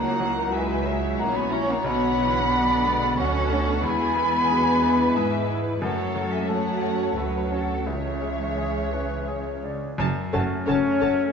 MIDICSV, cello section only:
0, 0, Header, 1, 2, 480
1, 0, Start_track
1, 0, Key_signature, 3, "minor"
1, 0, Tempo, 661521
1, 1346, Time_signature, 3, 2, 24, 8
1, 4712, Tempo, 692841
1, 8055, End_track
2, 0, Start_track
2, 0, Title_t, "Cello section"
2, 0, Program_c, 0, 48
2, 0, Note_on_c, 0, 58, 77
2, 380, Note_off_c, 0, 58, 0
2, 392, Note_on_c, 0, 56, 75
2, 859, Note_off_c, 0, 56, 0
2, 865, Note_on_c, 0, 58, 85
2, 985, Note_off_c, 0, 58, 0
2, 991, Note_on_c, 0, 59, 76
2, 1108, Note_off_c, 0, 59, 0
2, 1110, Note_on_c, 0, 61, 84
2, 1226, Note_on_c, 0, 58, 78
2, 1228, Note_off_c, 0, 61, 0
2, 1344, Note_on_c, 0, 59, 79
2, 1346, Note_off_c, 0, 58, 0
2, 2290, Note_off_c, 0, 59, 0
2, 2313, Note_on_c, 0, 61, 94
2, 2781, Note_on_c, 0, 59, 85
2, 2788, Note_off_c, 0, 61, 0
2, 3726, Note_off_c, 0, 59, 0
2, 3750, Note_on_c, 0, 56, 72
2, 3989, Note_off_c, 0, 56, 0
2, 4226, Note_on_c, 0, 54, 70
2, 4565, Note_off_c, 0, 54, 0
2, 4595, Note_on_c, 0, 56, 70
2, 4715, Note_off_c, 0, 56, 0
2, 4718, Note_on_c, 0, 57, 75
2, 5185, Note_off_c, 0, 57, 0
2, 5187, Note_on_c, 0, 54, 66
2, 5667, Note_on_c, 0, 52, 55
2, 5669, Note_off_c, 0, 54, 0
2, 6887, Note_off_c, 0, 52, 0
2, 7139, Note_on_c, 0, 42, 77
2, 7194, Note_off_c, 0, 42, 0
2, 7373, Note_on_c, 0, 42, 72
2, 7428, Note_off_c, 0, 42, 0
2, 7604, Note_on_c, 0, 42, 75
2, 7660, Note_off_c, 0, 42, 0
2, 7845, Note_on_c, 0, 42, 64
2, 7900, Note_off_c, 0, 42, 0
2, 8055, End_track
0, 0, End_of_file